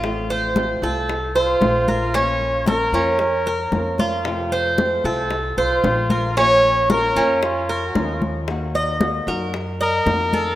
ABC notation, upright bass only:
X:1
M:4/4
L:1/8
Q:1/4=114
K:Bbm
V:1 name="Upright bass" clef=bass
=A,,,3 C,,3 B,,,2- | B,,,3 F,,3 F,,2- | F,,3 C,,2 C,, B,,,2- | B,,,3 F,,3 E,,2- |
E,,3 G,,3 F,,2 |]